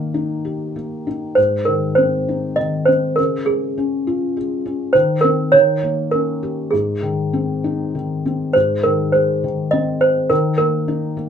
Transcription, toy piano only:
Already playing: D#5
1.35 C5
1.65 A#4
1.95 C5
2.56 D#5
2.85 C5
3.16 A#4
3.46 G#4
4.93 C5
5.21 A#4
5.52 C#5
6.11 A#4
6.71 G#4
8.53 C5
8.83 A#4
9.12 C5
9.71 D#5
10.01 C5
10.30 A#4
10.58 A#4

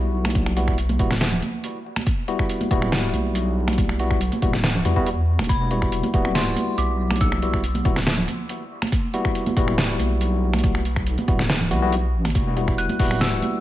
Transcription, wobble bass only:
Already playing: B1
0.99 D1
2.71 D1
3.14 B1
4.42 D1
4.85 E2
5.39 E1
5.49 E1
6.14 D1
6.78 B1
7.85 D1
9.57 D1
9.99 B1
11.28 D1
11.71 B1
12.14 A1
12.35 E1
12.99 D1

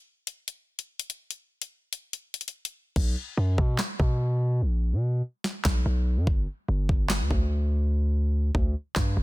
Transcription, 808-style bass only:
2.96 B1
3.37 F#2
3.58 B2
4.00 B2
4.62 A#1
4.93 B2
5.65 B1
5.86 B1
6.17 F#2
6.27 G1
6.68 G1
6.89 G1
7.20 D2
7.31 D2
8.55 D2
8.96 G2
9.17 G1

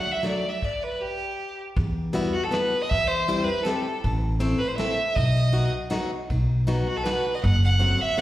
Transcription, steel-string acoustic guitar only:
0.23 F#3 A3 D4 F#4
2.13 G3 B3 E4 F#4
2.51 G3 B3 E4 F#4
3.28 G3 C4 E4 G4
3.65 G3 C4 E4 G4
4.40 A3 C4 E4 A4
4.78 A3 C4 E4 A4
5.52 F#3 B3 D#4 F#4
5.90 F#3 B3 D#4 F#4
6.67 F#3 B3 D#4 F#4
7.05 F#3 B3 D#4 F#4
7.79 F#3 A3 C4 F#4
8.17 F#3 A3 F#4

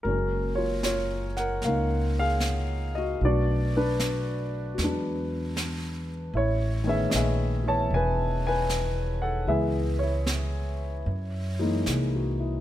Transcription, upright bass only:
0.05 F#1
1.64 C#2
3.21 B1
4.78 E2
6.33 A1
7.14 A#1
7.90 E1
9.47 C#2
11.06 F#2
11.87 C2

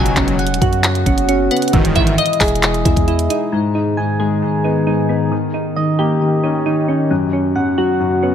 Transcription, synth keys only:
Already playing: F#3
0.17 C#4
0.39 F#5
0.61 F#4
1.06 C#4
1.29 C#4
1.51 B3
1.73 E3
1.96 E4
2.18 D#5
2.41 G#4
2.85 E4
3.08 E4
3.30 D#4
3.52 G#3
3.75 D#4
3.97 G#5
4.20 G#4
4.64 D#4
4.87 D#4
5.09 B3
5.32 D#3
5.54 D#4
5.76 D#5
5.99 G4
6.44 D#4
6.66 D#4
6.88 C#4
7.11 F#3
7.33 C#4
7.56 F#5
7.78 F#4
8.23 C#4

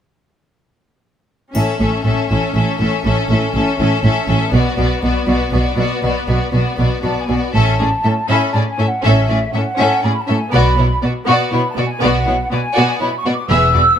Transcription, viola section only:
1.54 C#4
1.80 C#4
2.05 C#4
2.30 C#4
2.55 C#4
2.80 C#4
3.06 C#4
3.30 C#4
3.54 C#4
3.79 C#4
4.03 C#4
4.28 C#4
4.52 B3
4.77 B3
5.03 B3
5.27 B3
5.52 B3
5.78 B3
6.04 B3
6.29 B3
6.53 B3
6.78 B3
7.04 B3
7.29 B3
7.55 C#4
7.79 C#4
8.05 C#4
8.29 C#4
8.54 C#4
8.79 C#4
9.04 C#4
9.29 C#4
9.54 C#4
9.78 C#4
10.02 C#4
10.28 C#4
10.52 B3
10.77 B3
11.03 B3
11.27 B3
11.52 B3
11.77 B3
12.01 B3
12.27 B3
12.52 B3
12.77 B3
13.01 B3
13.26 B3
13.49 B3
13.74 B3

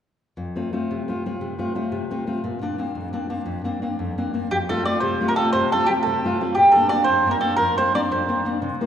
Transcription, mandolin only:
4.51 G4
4.69 A4
4.85 D5
5.00 C5
5.28 A#4
5.36 A4
5.53 C5
5.72 A4
5.86 G4
6.03 A4
6.55 G4
6.72 A4
6.89 D5
7.04 C5
7.31 A#4
7.41 A4
7.56 A#4
7.78 C5
7.95 D5
8.12 C5

